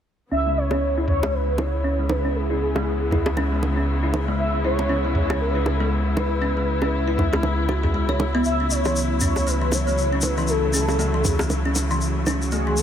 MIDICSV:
0, 0, Header, 1, 6, 480
1, 0, Start_track
1, 0, Key_signature, 4, "minor"
1, 0, Tempo, 508475
1, 298, Time_signature, 4, 2, 24, 8
1, 12106, End_track
2, 0, Start_track
2, 0, Title_t, "Analog synth lead"
2, 0, Program_c, 0, 81
2, 296, Note_on_c, 0, 76, 120
2, 539, Note_on_c, 0, 73, 109
2, 554, Note_off_c, 0, 76, 0
2, 1016, Note_off_c, 0, 73, 0
2, 1022, Note_on_c, 0, 73, 98
2, 1261, Note_on_c, 0, 71, 95
2, 1275, Note_off_c, 0, 73, 0
2, 1501, Note_on_c, 0, 73, 101
2, 1515, Note_off_c, 0, 71, 0
2, 1978, Note_on_c, 0, 71, 91
2, 1992, Note_off_c, 0, 73, 0
2, 2223, Note_on_c, 0, 68, 95
2, 2238, Note_off_c, 0, 71, 0
2, 2459, Note_off_c, 0, 68, 0
2, 2464, Note_on_c, 0, 68, 85
2, 3144, Note_off_c, 0, 68, 0
2, 4140, Note_on_c, 0, 76, 118
2, 4362, Note_off_c, 0, 76, 0
2, 4382, Note_on_c, 0, 73, 109
2, 4827, Note_off_c, 0, 73, 0
2, 4861, Note_on_c, 0, 73, 91
2, 5083, Note_off_c, 0, 73, 0
2, 5100, Note_on_c, 0, 71, 77
2, 5546, Note_off_c, 0, 71, 0
2, 5818, Note_on_c, 0, 71, 125
2, 7220, Note_off_c, 0, 71, 0
2, 7975, Note_on_c, 0, 76, 122
2, 8222, Note_on_c, 0, 73, 105
2, 8236, Note_off_c, 0, 76, 0
2, 8700, Note_off_c, 0, 73, 0
2, 8704, Note_on_c, 0, 73, 95
2, 8943, Note_on_c, 0, 71, 100
2, 8957, Note_off_c, 0, 73, 0
2, 9189, Note_on_c, 0, 73, 98
2, 9203, Note_off_c, 0, 71, 0
2, 9668, Note_on_c, 0, 71, 92
2, 9683, Note_off_c, 0, 73, 0
2, 9902, Note_on_c, 0, 69, 100
2, 9916, Note_off_c, 0, 71, 0
2, 10136, Note_off_c, 0, 69, 0
2, 10141, Note_on_c, 0, 69, 83
2, 10613, Note_off_c, 0, 69, 0
2, 10613, Note_on_c, 0, 68, 83
2, 10822, Note_off_c, 0, 68, 0
2, 11827, Note_on_c, 0, 68, 98
2, 12063, Note_on_c, 0, 69, 96
2, 12077, Note_off_c, 0, 68, 0
2, 12106, Note_off_c, 0, 69, 0
2, 12106, End_track
3, 0, Start_track
3, 0, Title_t, "Kalimba"
3, 0, Program_c, 1, 108
3, 297, Note_on_c, 1, 61, 74
3, 373, Note_off_c, 1, 61, 0
3, 441, Note_on_c, 1, 56, 68
3, 530, Note_off_c, 1, 56, 0
3, 680, Note_on_c, 1, 61, 67
3, 733, Note_off_c, 1, 61, 0
3, 922, Note_on_c, 1, 64, 73
3, 974, Note_off_c, 1, 64, 0
3, 1160, Note_on_c, 1, 56, 96
3, 1213, Note_off_c, 1, 56, 0
3, 1499, Note_on_c, 1, 64, 71
3, 1625, Note_off_c, 1, 64, 0
3, 1738, Note_on_c, 1, 61, 73
3, 1814, Note_off_c, 1, 61, 0
3, 1880, Note_on_c, 1, 56, 70
3, 1969, Note_off_c, 1, 56, 0
3, 2122, Note_on_c, 1, 61, 71
3, 2174, Note_off_c, 1, 61, 0
3, 2362, Note_on_c, 1, 64, 73
3, 2414, Note_off_c, 1, 64, 0
3, 2602, Note_on_c, 1, 56, 92
3, 2654, Note_off_c, 1, 56, 0
3, 2942, Note_on_c, 1, 64, 71
3, 3066, Note_off_c, 1, 64, 0
3, 3184, Note_on_c, 1, 61, 78
3, 3257, Note_off_c, 1, 61, 0
3, 3323, Note_on_c, 1, 56, 71
3, 3411, Note_off_c, 1, 56, 0
3, 3562, Note_on_c, 1, 61, 70
3, 3614, Note_off_c, 1, 61, 0
3, 3802, Note_on_c, 1, 64, 72
3, 3854, Note_off_c, 1, 64, 0
3, 4042, Note_on_c, 1, 56, 89
3, 4094, Note_off_c, 1, 56, 0
3, 4384, Note_on_c, 1, 64, 73
3, 4507, Note_off_c, 1, 64, 0
3, 4619, Note_on_c, 1, 61, 79
3, 4695, Note_off_c, 1, 61, 0
3, 4763, Note_on_c, 1, 56, 77
3, 4851, Note_off_c, 1, 56, 0
3, 5001, Note_on_c, 1, 61, 73
3, 5054, Note_off_c, 1, 61, 0
3, 5240, Note_on_c, 1, 64, 72
3, 5293, Note_off_c, 1, 64, 0
3, 5479, Note_on_c, 1, 56, 95
3, 5532, Note_off_c, 1, 56, 0
3, 5819, Note_on_c, 1, 64, 74
3, 5945, Note_off_c, 1, 64, 0
3, 6057, Note_on_c, 1, 61, 75
3, 6133, Note_off_c, 1, 61, 0
3, 6202, Note_on_c, 1, 56, 68
3, 6290, Note_off_c, 1, 56, 0
3, 6439, Note_on_c, 1, 61, 71
3, 6493, Note_off_c, 1, 61, 0
3, 6679, Note_on_c, 1, 64, 77
3, 6733, Note_off_c, 1, 64, 0
3, 6917, Note_on_c, 1, 56, 96
3, 6972, Note_off_c, 1, 56, 0
3, 7256, Note_on_c, 1, 66, 75
3, 7383, Note_off_c, 1, 66, 0
3, 7395, Note_on_c, 1, 68, 70
3, 7487, Note_off_c, 1, 68, 0
3, 7498, Note_on_c, 1, 56, 77
3, 7624, Note_off_c, 1, 56, 0
3, 7636, Note_on_c, 1, 73, 75
3, 7691, Note_off_c, 1, 73, 0
3, 7879, Note_on_c, 1, 59, 96
3, 7933, Note_off_c, 1, 59, 0
3, 8120, Note_on_c, 1, 61, 69
3, 8173, Note_off_c, 1, 61, 0
3, 8357, Note_on_c, 1, 52, 91
3, 8412, Note_off_c, 1, 52, 0
3, 8697, Note_on_c, 1, 61, 70
3, 8824, Note_off_c, 1, 61, 0
3, 8937, Note_on_c, 1, 57, 79
3, 9013, Note_off_c, 1, 57, 0
3, 9077, Note_on_c, 1, 52, 72
3, 9167, Note_off_c, 1, 52, 0
3, 9318, Note_on_c, 1, 57, 74
3, 9372, Note_off_c, 1, 57, 0
3, 9558, Note_on_c, 1, 61, 71
3, 9612, Note_off_c, 1, 61, 0
3, 9797, Note_on_c, 1, 52, 96
3, 9851, Note_off_c, 1, 52, 0
3, 10135, Note_on_c, 1, 61, 71
3, 10263, Note_off_c, 1, 61, 0
3, 10376, Note_on_c, 1, 57, 79
3, 10453, Note_off_c, 1, 57, 0
3, 10517, Note_on_c, 1, 52, 76
3, 10608, Note_off_c, 1, 52, 0
3, 10760, Note_on_c, 1, 57, 70
3, 10813, Note_off_c, 1, 57, 0
3, 11001, Note_on_c, 1, 61, 72
3, 11054, Note_off_c, 1, 61, 0
3, 11241, Note_on_c, 1, 52, 94
3, 11294, Note_off_c, 1, 52, 0
3, 11579, Note_on_c, 1, 61, 70
3, 11705, Note_off_c, 1, 61, 0
3, 11821, Note_on_c, 1, 57, 79
3, 11895, Note_off_c, 1, 57, 0
3, 11961, Note_on_c, 1, 52, 76
3, 12049, Note_off_c, 1, 52, 0
3, 12106, End_track
4, 0, Start_track
4, 0, Title_t, "String section"
4, 0, Program_c, 2, 48
4, 295, Note_on_c, 2, 64, 83
4, 297, Note_on_c, 2, 49, 74
4, 297, Note_on_c, 2, 56, 65
4, 298, Note_on_c, 2, 59, 64
4, 7940, Note_off_c, 2, 49, 0
4, 7940, Note_off_c, 2, 56, 0
4, 7940, Note_off_c, 2, 59, 0
4, 7973, Note_on_c, 2, 54, 65
4, 7974, Note_on_c, 2, 57, 67
4, 7975, Note_on_c, 2, 49, 72
4, 11779, Note_off_c, 2, 64, 0
4, 11817, Note_on_c, 2, 66, 82
4, 12106, Note_off_c, 2, 49, 0
4, 12106, Note_off_c, 2, 54, 0
4, 12106, Note_off_c, 2, 57, 0
4, 12106, Note_off_c, 2, 66, 0
4, 12106, End_track
5, 0, Start_track
5, 0, Title_t, "Detuned saw bass"
5, 0, Program_c, 3, 39
5, 296, Note_on_c, 3, 37, 83
5, 7957, Note_off_c, 3, 37, 0
5, 7977, Note_on_c, 3, 37, 77
5, 12106, Note_off_c, 3, 37, 0
5, 12106, End_track
6, 0, Start_track
6, 0, Title_t, "Drums"
6, 668, Note_on_c, 9, 60, 66
6, 762, Note_off_c, 9, 60, 0
6, 1016, Note_on_c, 9, 45, 79
6, 1111, Note_off_c, 9, 45, 0
6, 1161, Note_on_c, 9, 60, 97
6, 1256, Note_off_c, 9, 60, 0
6, 1492, Note_on_c, 9, 60, 77
6, 1496, Note_on_c, 9, 61, 79
6, 1587, Note_off_c, 9, 60, 0
6, 1590, Note_off_c, 9, 61, 0
6, 1977, Note_on_c, 9, 61, 88
6, 2072, Note_off_c, 9, 61, 0
6, 2602, Note_on_c, 9, 60, 80
6, 2696, Note_off_c, 9, 60, 0
6, 2938, Note_on_c, 9, 45, 80
6, 2948, Note_on_c, 9, 61, 53
6, 3032, Note_off_c, 9, 45, 0
6, 3042, Note_off_c, 9, 61, 0
6, 3077, Note_on_c, 9, 60, 115
6, 3171, Note_off_c, 9, 60, 0
6, 3180, Note_on_c, 9, 61, 76
6, 3274, Note_off_c, 9, 61, 0
6, 3425, Note_on_c, 9, 61, 74
6, 3519, Note_off_c, 9, 61, 0
6, 3905, Note_on_c, 9, 61, 94
6, 4000, Note_off_c, 9, 61, 0
6, 4520, Note_on_c, 9, 60, 75
6, 4614, Note_off_c, 9, 60, 0
6, 4861, Note_on_c, 9, 45, 82
6, 4955, Note_off_c, 9, 45, 0
6, 5002, Note_on_c, 9, 60, 100
6, 5097, Note_off_c, 9, 60, 0
6, 5342, Note_on_c, 9, 60, 77
6, 5343, Note_on_c, 9, 61, 67
6, 5436, Note_off_c, 9, 60, 0
6, 5438, Note_off_c, 9, 61, 0
6, 5823, Note_on_c, 9, 61, 96
6, 5917, Note_off_c, 9, 61, 0
6, 6435, Note_on_c, 9, 60, 73
6, 6530, Note_off_c, 9, 60, 0
6, 6778, Note_on_c, 9, 45, 85
6, 6786, Note_on_c, 9, 61, 56
6, 6872, Note_off_c, 9, 45, 0
6, 6881, Note_off_c, 9, 61, 0
6, 6923, Note_on_c, 9, 60, 89
6, 7016, Note_on_c, 9, 61, 79
6, 7017, Note_off_c, 9, 60, 0
6, 7110, Note_off_c, 9, 61, 0
6, 7257, Note_on_c, 9, 61, 70
6, 7351, Note_off_c, 9, 61, 0
6, 7398, Note_on_c, 9, 45, 80
6, 7493, Note_off_c, 9, 45, 0
6, 7635, Note_on_c, 9, 61, 57
6, 7730, Note_off_c, 9, 61, 0
6, 7738, Note_on_c, 9, 61, 85
6, 7832, Note_off_c, 9, 61, 0
6, 7973, Note_on_c, 9, 82, 47
6, 8067, Note_off_c, 9, 82, 0
6, 8218, Note_on_c, 9, 82, 80
6, 8312, Note_off_c, 9, 82, 0
6, 8353, Note_on_c, 9, 82, 35
6, 8359, Note_on_c, 9, 60, 75
6, 8447, Note_off_c, 9, 82, 0
6, 8453, Note_off_c, 9, 60, 0
6, 8458, Note_on_c, 9, 82, 57
6, 8552, Note_off_c, 9, 82, 0
6, 8689, Note_on_c, 9, 82, 99
6, 8699, Note_on_c, 9, 45, 86
6, 8783, Note_off_c, 9, 82, 0
6, 8794, Note_off_c, 9, 45, 0
6, 8835, Note_on_c, 9, 60, 83
6, 8839, Note_on_c, 9, 82, 35
6, 8930, Note_off_c, 9, 60, 0
6, 8933, Note_off_c, 9, 82, 0
6, 8942, Note_on_c, 9, 82, 52
6, 9037, Note_off_c, 9, 82, 0
6, 9173, Note_on_c, 9, 60, 70
6, 9177, Note_on_c, 9, 61, 67
6, 9181, Note_on_c, 9, 82, 77
6, 9267, Note_off_c, 9, 60, 0
6, 9272, Note_off_c, 9, 61, 0
6, 9275, Note_off_c, 9, 82, 0
6, 9321, Note_on_c, 9, 82, 36
6, 9415, Note_off_c, 9, 82, 0
6, 9421, Note_on_c, 9, 82, 45
6, 9515, Note_off_c, 9, 82, 0
6, 9643, Note_on_c, 9, 82, 88
6, 9657, Note_on_c, 9, 61, 83
6, 9738, Note_off_c, 9, 82, 0
6, 9751, Note_off_c, 9, 61, 0
6, 9794, Note_on_c, 9, 82, 34
6, 9887, Note_off_c, 9, 82, 0
6, 9887, Note_on_c, 9, 82, 49
6, 9981, Note_off_c, 9, 82, 0
6, 10135, Note_on_c, 9, 82, 86
6, 10229, Note_off_c, 9, 82, 0
6, 10274, Note_on_c, 9, 60, 74
6, 10281, Note_on_c, 9, 82, 36
6, 10369, Note_off_c, 9, 60, 0
6, 10375, Note_off_c, 9, 82, 0
6, 10380, Note_on_c, 9, 82, 47
6, 10474, Note_off_c, 9, 82, 0
6, 10617, Note_on_c, 9, 82, 89
6, 10618, Note_on_c, 9, 61, 60
6, 10619, Note_on_c, 9, 45, 90
6, 10712, Note_off_c, 9, 82, 0
6, 10713, Note_off_c, 9, 45, 0
6, 10713, Note_off_c, 9, 61, 0
6, 10754, Note_on_c, 9, 60, 104
6, 10764, Note_on_c, 9, 82, 37
6, 10848, Note_off_c, 9, 60, 0
6, 10855, Note_off_c, 9, 82, 0
6, 10855, Note_on_c, 9, 61, 73
6, 10855, Note_on_c, 9, 82, 47
6, 10950, Note_off_c, 9, 61, 0
6, 10950, Note_off_c, 9, 82, 0
6, 11096, Note_on_c, 9, 82, 90
6, 11100, Note_on_c, 9, 61, 70
6, 11190, Note_off_c, 9, 82, 0
6, 11194, Note_off_c, 9, 61, 0
6, 11240, Note_on_c, 9, 82, 36
6, 11334, Note_off_c, 9, 82, 0
6, 11338, Note_on_c, 9, 82, 44
6, 11432, Note_off_c, 9, 82, 0
6, 11579, Note_on_c, 9, 61, 82
6, 11579, Note_on_c, 9, 82, 78
6, 11673, Note_off_c, 9, 61, 0
6, 11673, Note_off_c, 9, 82, 0
6, 11722, Note_on_c, 9, 82, 34
6, 11814, Note_off_c, 9, 82, 0
6, 11814, Note_on_c, 9, 82, 45
6, 11908, Note_off_c, 9, 82, 0
6, 12054, Note_on_c, 9, 82, 77
6, 12106, Note_off_c, 9, 82, 0
6, 12106, End_track
0, 0, End_of_file